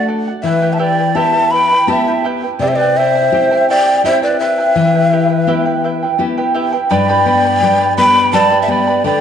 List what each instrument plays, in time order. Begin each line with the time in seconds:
Already playing: nylon-string guitar A3 D4 F#4
0.08 charango A4 D5 F#5
0.28 charango D5 F#5
0.43 nylon-string guitar E3, charango E4 B4 E5 G5, pan flute B4, quena E5
0.62 charango E4 G4 B4 E5 G5
0.73 pan flute E5, quena A5
0.79 charango E4 G4 B4 E5 G5, pan flute D5, quena G5
0.98 charango E4 B4 G5
1.15 nylon-string guitar B3 E4 G4, charango E4 G4 B4 E5 G5, pan flute E5, quena A5
1.33 charango E4 B4 G5
1.51 charango E4 B4 E5 G5, pan flute G5, quena B5
1.72 charango E4 B4 G5
1.87 nylon-string guitar B3 E4 G4, charango E4 B4 E5 G5, pan flute E5, quena A5
2.07 charango E4 G4 B4 E5 G5
2.24 charango E4 G4 B4 E5 G5
2.43 charango E4 B4 G5
2.59 nylon-string guitar C3, charango E4 G4 C5 E5 G5, pan flute G4, quena D5
2.68 pan flute C5, quena E5
2.75 pan flute B4, quena D5
2.81 charango E4 C5 G5
2.97 charango E4 C5 E5 G5, pan flute C5, quena E5
3.15 charango E4 C5 G5
3.32 nylon-string guitar C4 E4 G4, charango E4 C5 E5 G5
3.51 charango E4 G4 C5 E5 G5
3.69 charango E4 G4 C5 E5 G5, pan flute D5, quena G5
3.87 charango E4 C5 G5
4.04 nylon-string guitar C4 E4 G4, charango E4 G4 C5 E5 G5, pan flute C5, quena E5
4.23 charango E4 C5 G5, pan flute B4, quena D5
4.40 charango E4 C5 E5 G5, pan flute B4, quena E5
4.58 charango E4 C5 G5
4.75 nylon-string guitar E3, charango E4 B4 E5 G5
4.95 charango E4 G4 B4 E5 G5
5.13 charango E4 G4 B4 E5 G5
5.30 charango E4 B4 G5
5.47 nylon-string guitar B3 E4 G4, charango E4 G4 B4 E5 G5
5.66 charango E4 B4 G5
5.84 charango E4 B4 E5 G5
6.03 charango E4 B4 G5
6.18 nylon-string guitar B3 E4 G4, charango E4 B4 E5 G5
6.37 charango E4 G4 B4 E5 G5
6.54 charango E4 G4 B4 E5 G5
6.73 charango E4 B4 G5
6.90 nylon-string guitar G2, charango G4 B4 D5 G5 B5, pan flute D5, quena G5
7.09 charango G4 B4 D5 G5 B5
7.26 nylon-string guitar B3, charango B4 D5 G5 B5
7.45 charango B4 D5 B5
7.62 nylon-string guitar G3, charango B4 D5 G5 B5
7.81 charango B4 D5 B5
7.97 nylon-string guitar B3, charango G4 B4 D5 G5 B5, pan flute G5, quena B5
8.15 charango B4 D5 B5
8.33 nylon-string guitar G3, charango G4 B4 D5 G5 B5, pan flute D5, quena A5
8.51 charango G4 B4 D5 G5 B5
8.61 pan flute E5, quena A5
8.68 nylon-string guitar B3, charango B4 D5 G5 B5, pan flute D5, quena G5
8.87 charango B4 D5 B5
9.04 nylon-string guitar D3, charango B4 D5 G5 B5, pan flute D5, quena G5